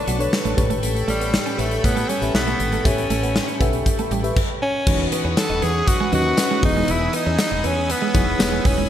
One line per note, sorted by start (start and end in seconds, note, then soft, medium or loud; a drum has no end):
0.00 0.60 B2 medium
0.00 0.60 D3 medium
0.00 0.18 D4 medium
0.00 0.54 D4 loud
0.00 0.19 A4 medium
0.00 0.20 B4 medium
0.00 0.54 B4 medium
0.00 0.20 C#5 medium
0.00 0.11 D5 medium
0.00 0.54 A5 medium
0.00 4.32 C#6 medium
0.07 0.26 B1 medium
0.07 0.18 F#3 medium
0.07 closed hi-hat medium
0.18 0.57 D4 medium
0.18 0.56 A4 medium
0.18 0.56 B4 medium
0.18 0.57 C#5 loud
0.18 closed hi-hat medium
0.33 snare loud
0.45 0.55 A1 medium
0.45 0.55 A3 medium
0.45 closed hi-hat soft
0.57 0.68 A1 medium
0.57 1.29 A2 medium
0.57 1.44 G4 medium
0.57 1.44 A4 medium
0.57 4.33 A4 medium
0.57 1.44 B4 medium
0.57 1.44 C#5 loud
0.57 4.33 G5 medium
0.57 4.33 B5 medium
0.57 muted clean electric guitar stroke soft
0.57 kick loud
0.57 closed hi-hat medium
0.70 0.80 G#1 medium
0.70 0.80 A3 medium
0.70 closed hi-hat medium
0.83 1.02 A1 loud
0.83 closed hi-hat medium
0.95 muted clean electric guitar stroke soft
0.95 closed hi-hat soft
1.08 1.36 A1 medium
1.08 1.56 G3 medium
1.08 1.18 A3 medium
1.08 closed hi-hat medium
1.20 1.31 B3 medium
1.20 closed hi-hat medium
1.33 muted clean electric guitar stroke soft
1.33 snare loud
1.46 1.56 C#4 medium
1.46 closed hi-hat soft
1.57 1.77 A1 medium
1.57 1.86 A3 medium
1.57 1.69 B3 medium
1.57 2.12 G4 medium
1.57 2.12 A4 medium
1.57 2.13 B4 medium
1.57 2.13 C#5 medium
1.57 closed hi-hat medium
1.71 closed hi-hat soft
1.84 2.03 A2 loud
1.84 2.11 B3 medium
1.84 muted clean electric guitar stroke soft
1.84 kick medium
1.84 closed hi-hat medium
1.97 2.07 A3 medium
1.97 closed hi-hat soft
2.09 2.19 G3 medium
2.09 2.35 C#4 medium
2.09 closed hi-hat medium
2.21 2.31 A1 medium
2.21 2.76 G4 medium
2.21 2.76 A4 medium
2.21 2.76 B4 medium
2.21 2.76 E5 medium
2.21 closed hi-hat medium
2.34 2.53 B1 medium
2.34 2.88 B3 loud
2.34 snare loud
2.47 2.57 A3 medium
2.47 closed hi-hat soft
2.59 2.78 G#1 medium
2.59 3.32 A2 medium
2.59 muted clean electric guitar stroke soft
2.59 closed hi-hat medium
2.72 2.82 A3 medium
2.72 closed hi-hat medium
2.84 3.04 A1 loud
2.84 3.86 C#4 medium
2.84 3.49 G4 medium
2.84 3.50 A4 medium
2.84 3.50 B4 medium
2.84 3.50 E5 medium
2.84 kick loud
2.84 closed hi-hat medium
2.98 muted clean electric guitar stroke soft
2.98 closed hi-hat soft
3.10 3.38 A1 medium
3.10 3.20 A3 medium
3.10 closed hi-hat medium
3.23 3.33 B3 medium
3.23 closed hi-hat medium
3.35 muted clean electric guitar stroke soft
3.35 snare loud
3.48 3.58 C#4 medium
3.48 closed hi-hat soft
3.60 3.80 B1 medium
3.60 3.71 B3 medium
3.60 4.14 G4 medium
3.60 4.14 A4 medium
3.60 4.15 B4 medium
3.60 4.15 E5 medium
3.60 kick medium
3.60 closed hi-hat medium
3.73 closed hi-hat soft
3.86 muted clean electric guitar stroke soft
3.86 kick medium
3.86 closed hi-hat medium
3.99 4.09 A3 medium
3.99 closed hi-hat soft
4.11 4.30 A1 medium
4.11 4.21 G3 medium
4.11 closed hi-hat medium
4.23 4.36 G4 medium
4.23 4.36 A4 medium
4.23 4.36 B4 medium
4.23 4.36 E5 loud
4.23 closed hi-hat soft
4.36 kick loud
4.36 crash medium
4.62 5.09 C#4 loud
4.86 5.06 E1 loud
4.86 5.59 E3 medium
4.86 5.73 C#4 medium
4.86 5.73 D#4 medium
4.86 5.73 F#4 medium
4.86 8.89 B4 medium
4.86 5.73 B4 medium
4.86 5.74 C#5 medium
4.86 6.62 F#5 medium
4.86 6.61 C#6 medium
4.86 8.86 D#6 medium
4.86 kick loud
4.86 crash loud
5.00 muted clean electric guitar stroke soft
5.12 5.22 B3 medium
5.12 closed hi-hat medium
5.24 5.34 E2 medium
5.24 5.35 C#4 medium
5.37 5.65 A4 loud
5.37 muted clean electric guitar stroke medium
5.37 snare loud
5.37 closed hi-hat medium
5.37 tambourine medium
5.49 5.59 E1 loud
5.49 5.60 D#4 medium
5.62 5.81 E2 loud
5.62 5.72 B3 medium
5.62 5.90 G#4 loud
5.62 closed hi-hat medium
5.87 6.13 F#4 loud
5.87 muted clean electric guitar stroke soft
5.87 kick medium
5.87 closed hi-hat medium
6.00 6.10 G#3 medium
6.12 6.31 D#2 medium
6.12 6.23 F#3 medium
6.12 6.34 C#4 medium
6.12 6.34 D#4 medium
6.12 6.34 F#4 medium
6.12 6.61 F#4 loud
6.12 6.34 B4 medium
6.12 6.35 D#5 medium
6.12 closed hi-hat medium
6.37 6.63 C#4 medium
6.37 6.61 D#4 medium
6.37 6.63 F#4 medium
6.37 6.62 B4 medium
6.37 6.63 C#5 medium
6.37 snare loud
6.37 closed hi-hat loud
6.37 tambourine medium
6.51 6.61 G#3 medium
6.62 6.82 E1 loud
6.62 7.35 E3 medium
6.62 7.49 B3 medium
6.62 7.49 D#4 medium
6.62 6.92 D#4 loud
6.62 7.49 E4 medium
6.62 7.49 G#4 medium
6.62 7.50 B4 medium
6.62 8.88 G#5 medium
6.62 8.89 E6 medium
6.62 muted clean electric guitar stroke soft
6.62 kick loud
6.62 open hi-hat medium
6.76 6.86 G#3 medium
6.88 7.07 E1 loud
6.88 7.15 E4 loud
6.88 closed hi-hat medium
7.01 muted clean electric guitar stroke soft
7.13 7.24 B3 medium
7.13 7.38 D#4 medium
7.13 closed hi-hat medium
7.26 7.36 E2 loud
7.26 7.36 C#4 medium
7.38 7.67 D#4 medium
7.38 muted clean electric guitar stroke soft
7.38 snare loud
7.38 closed hi-hat medium
7.38 tambourine medium
7.51 7.61 E1 loud
7.51 7.61 D#4 medium
7.64 7.93 E2 loud
7.64 7.74 B3 medium
7.64 7.93 C#4 medium
7.64 closed hi-hat medium
7.89 8.68 B3 medium
7.89 muted clean electric guitar stroke soft
7.89 closed hi-hat medium
8.02 8.12 G#3 medium
8.13 8.34 E1 medium
8.13 8.24 F#3 medium
8.13 8.36 B3 medium
8.13 8.36 D#4 medium
8.13 8.36 E4 medium
8.13 8.36 G#4 medium
8.13 8.36 C#5 medium
8.13 kick loud
8.13 closed hi-hat medium
8.39 8.59 E1 loud
8.39 8.82 B3 medium
8.39 8.82 D#4 medium
8.39 8.83 E4 medium
8.39 8.83 G#4 medium
8.39 8.83 C#5 medium
8.39 snare loud
8.39 closed hi-hat loud
8.39 tambourine medium
8.52 8.62 G#3 medium
8.65 8.84 D#1 loud
8.65 8.89 C#4 medium
8.65 muted clean electric guitar stroke soft
8.65 kick loud
8.65 open hi-hat medium
8.78 8.88 G#3 medium